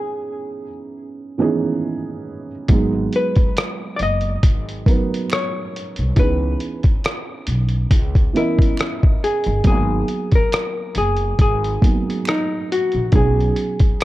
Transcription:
0.00 0.63 E3 medium
0.00 0.64 B3 medium
0.00 0.64 C#4 medium
0.00 0.65 D#4 medium
0.00 0.69 G#4 medium
0.00 2.23 G#4 medium
1.38 1.46 D#3 medium
1.38 2.47 B3 medium
1.38 2.47 C#4 medium
1.38 2.48 D#4 medium
1.38 2.48 G#4 loud
1.44 2.50 E3 medium
2.68 3.06 G#1 loud
2.68 4.11 F#3 medium
2.68 4.11 G#3 medium
2.68 4.12 B3 medium
2.68 4.12 D#4 medium
2.68 4.13 G#4 medium
2.68 kick loud
2.68 closed hi-hat medium
3.13 3.97 B4 loud
3.13 closed hi-hat medium
3.36 kick medium
3.36 closed hi-hat soft
3.57 finger snap medium
3.57 cross-stick loud
3.57 closed hi-hat medium
3.96 4.37 F#1 medium
3.96 4.01 D5 medium
3.96 closed hi-hat medium
4.03 5.32 D#5 loud
4.21 closed hi-hat soft
4.43 4.80 G#1 medium
4.43 kick medium
4.43 closed hi-hat medium
4.69 closed hi-hat soft
4.86 5.94 F#3 medium
4.86 5.95 B3 medium
4.86 5.96 D#4 medium
4.86 5.95 A#4 medium
4.86 5.96 B4 medium
4.86 kick loud
4.86 closed hi-hat medium
5.14 closed hi-hat soft
5.30 6.21 C#5 medium
5.30 finger snap medium
5.30 cross-stick loud
5.30 closed hi-hat medium
5.76 closed hi-hat medium
5.96 6.14 C2 medium
5.96 closed hi-hat soft
6.16 6.54 C#2 loud
6.16 7.59 E3 medium
6.16 7.59 B3 medium
6.16 7.60 C#4 medium
6.16 7.60 D#4 medium
6.16 7.61 G#4 medium
6.16 7.45 B4 medium
6.16 kick loud
6.16 closed hi-hat medium
6.60 closed hi-hat medium
6.83 kick medium
6.83 closed hi-hat soft
7.04 finger snap medium
7.04 cross-stick loud
7.04 closed hi-hat medium
7.47 7.84 B1 medium
7.47 closed hi-hat medium
7.69 closed hi-hat soft
7.91 8.28 C#2 loud
7.91 kick medium
7.91 closed hi-hat medium
8.15 kick loud
8.15 closed hi-hat soft
8.33 9.42 E3 medium
8.33 9.42 B3 medium
8.33 9.43 C#4 medium
8.33 9.25 E4 medium
8.33 9.44 A#4 medium
8.33 9.43 D#5 medium
8.33 closed hi-hat medium
8.59 kick loud
8.59 closed hi-hat soft
8.77 finger snap medium
8.77 cross-stick loud
8.77 closed hi-hat medium
9.03 kick loud
9.24 9.66 G#4 medium
9.24 closed hi-hat medium
9.44 9.62 G1 loud
9.44 closed hi-hat soft
9.64 10.02 G#1 loud
9.64 11.06 F#3 medium
9.64 11.07 A#3 medium
9.64 11.07 B3 medium
9.64 11.08 D#4 medium
9.64 10.35 G#4 loud
9.64 11.08 G#4 medium
9.64 kick loud
9.64 closed hi-hat medium
10.08 closed hi-hat medium
10.32 10.97 A#4 loud
10.32 kick medium
10.32 closed hi-hat soft
10.52 finger snap medium
10.52 cross-stick loud
10.52 closed hi-hat medium
10.95 11.32 F#1 loud
10.95 11.40 G#4 medium
10.95 closed hi-hat medium
11.17 closed hi-hat soft
11.39 11.76 G#1 loud
11.39 12.30 G#4 loud
11.39 kick medium
11.39 closed hi-hat medium
11.64 closed hi-hat soft
11.81 12.90 F#3 medium
11.81 12.90 A#3 medium
11.81 12.91 B3 medium
11.81 12.91 D#4 medium
11.81 12.92 G#4 medium
11.81 kick loud
11.81 closed hi-hat medium
12.10 closed hi-hat soft
12.25 12.72 D#4 medium
12.25 finger snap medium
12.25 cross-stick loud
12.25 closed hi-hat medium
12.72 13.15 F#4 medium
12.72 closed hi-hat medium
12.92 13.10 A#1 medium
12.92 closed hi-hat soft
13.12 13.50 B1 loud
13.12 14.04 F#3 medium
13.12 14.04 B3 medium
13.12 14.04 C#4 medium
13.12 14.04 D#4 medium
13.12 14.04 G#4 medium
13.12 kick loud
13.12 closed hi-hat medium
13.40 closed hi-hat soft
13.56 closed hi-hat medium
13.79 kick medium
13.79 closed hi-hat soft
14.01 finger snap medium
14.01 closed hi-hat medium

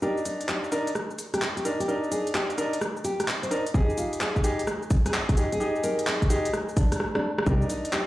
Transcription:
0.02 0.70 D4 medium
0.02 0.70 D#4 medium
0.02 0.18 G4 loud
0.02 0.70 A#4 medium
0.02 cabasa soft
0.17 cabasa soft
0.25 0.41 D#4 medium
0.25 closed hi-hat loud
0.25 cabasa medium
0.41 closed hi-hat medium
0.41 cabasa soft
0.49 0.69 G4 medium
0.49 clap loud
0.49 cabasa soft
0.64 cabasa soft
0.72 0.88 D4 medium
0.72 0.88 D#4 medium
0.72 0.88 A#4 loud
0.72 closed hi-hat loud
0.72 cabasa medium
0.87 closed hi-hat medium
0.87 cabasa soft
0.95 cross-stick medium
0.95 cabasa soft
1.11 cabasa soft
1.19 closed hi-hat loud
1.19 cabasa medium
1.34 1.43 G4 medium
1.34 cross-stick medium
1.34 closed hi-hat medium
1.34 cabasa soft
1.42 clap loud
1.42 cabasa soft
1.57 1.66 G4 medium
1.57 closed hi-hat medium
1.57 cabasa soft
1.65 1.76 D4 medium
1.65 1.76 D#4 medium
1.65 1.76 A#4 medium
1.65 closed hi-hat medium
1.65 cabasa medium
1.80 1.97 G4 medium
1.80 closed hi-hat medium
1.80 cabasa soft
1.88 2.56 D4 medium
1.88 2.56 D#4 medium
1.88 2.56 A#4 medium
1.88 cabasa soft
2.04 cabasa soft
2.11 2.27 G#4 medium
2.11 closed hi-hat loud
2.11 cabasa medium
2.27 closed hi-hat medium
2.27 cabasa soft
2.35 2.50 G4 medium
2.35 clap loud
2.35 cabasa soft
2.50 closed hi-hat soft
2.50 cabasa soft
2.58 2.74 D4 medium
2.58 2.74 D#4 medium
2.58 2.74 A#4 loud
2.58 closed hi-hat loud
2.58 cabasa medium
2.73 closed hi-hat medium
2.73 cabasa soft
2.81 cross-stick medium
2.81 cabasa soft
2.97 cabasa soft
3.04 3.24 G4 medium
3.04 closed hi-hat loud
3.04 cabasa medium
3.20 cross-stick medium
3.20 closed hi-hat medium
3.20 cabasa soft
3.28 clap loud
3.28 cabasa soft
3.43 3.60 C5 medium
3.43 closed hi-hat soft
3.43 cabasa soft
3.51 3.62 D4 medium
3.51 3.62 D#4 medium
3.51 3.62 A#4 medium
3.51 closed hi-hat loud
3.51 cabasa medium
3.66 closed hi-hat medium
3.66 cabasa soft
3.74 4.42 D#4 medium
3.74 4.42 G4 medium
3.74 4.42 G#4 medium
3.74 3.90 G#4 loud
3.74 kick loud
3.74 cabasa soft
3.90 cabasa soft
3.98 4.13 F4 medium
3.98 closed hi-hat loud
3.98 cabasa medium
4.13 closed hi-hat medium
4.13 cabasa soft
4.21 4.41 G#4 medium
4.21 clap loud
4.21 cabasa soft
4.36 kick medium
4.36 cabasa soft
4.44 4.60 D#4 medium
4.44 4.60 G4 medium
4.44 4.60 G#4 loud
4.44 closed hi-hat medium
4.44 cabasa medium
4.59 closed hi-hat medium
4.59 cabasa soft
4.67 cross-stick medium
4.67 cabasa soft
4.83 cabasa soft
4.91 kick loud
4.91 closed hi-hat loud
4.91 cabasa medium
5.06 5.15 G#4 medium
5.06 cross-stick medium
5.06 closed hi-hat medium
5.06 cabasa soft
5.14 clap loud
5.14 cabasa soft
5.29 5.38 G#4 medium
5.29 kick loud
5.29 closed hi-hat soft
5.29 cabasa soft
5.37 5.48 D#4 medium
5.37 5.48 G4 medium
5.37 5.48 G#4 medium
5.37 closed hi-hat medium
5.37 cabasa medium
5.52 5.69 G#4 loud
5.52 closed hi-hat medium
5.52 cabasa soft
5.60 6.28 D#4 medium
5.60 6.28 G4 medium
5.60 6.28 G#4 medium
5.60 cabasa soft
5.76 cabasa soft
5.84 5.99 A#4 medium
5.84 closed hi-hat loud
5.84 cabasa medium
5.99 closed hi-hat medium
5.99 cabasa soft
6.07 6.23 G#4 medium
6.07 clap loud
6.07 cabasa soft
6.22 kick medium
6.22 closed hi-hat soft
6.22 cabasa soft
6.30 6.46 D#4 medium
6.30 6.46 G4 medium
6.30 6.46 G#4 loud
6.30 closed hi-hat medium
6.30 cabasa medium
6.45 closed hi-hat medium
6.45 cabasa soft
6.53 cross-stick medium
6.53 cabasa soft
6.69 cabasa soft
6.77 6.97 D4 medium
6.77 kick loud
6.77 closed hi-hat loud
6.77 cabasa medium
6.92 cross-stick medium
6.92 closed hi-hat medium
6.92 cabasa soft
7.00 cross-stick medium
7.15 7.32 D4 loud
7.15 cross-stick medium
7.38 cross-stick medium
7.46 7.57 C2 loud
7.46 8.07 D4 medium
7.46 8.07 D#4 medium
7.46 7.62 G4 loud
7.46 8.07 A#4 medium
7.46 kick loud
7.46 cabasa soft
7.62 cabasa soft
7.70 7.86 D#4 medium
7.70 closed hi-hat loud
7.70 cabasa medium
7.85 closed hi-hat medium
7.85 cabasa soft
7.93 8.07 G4 loud
7.93 clap loud
7.93 cabasa soft

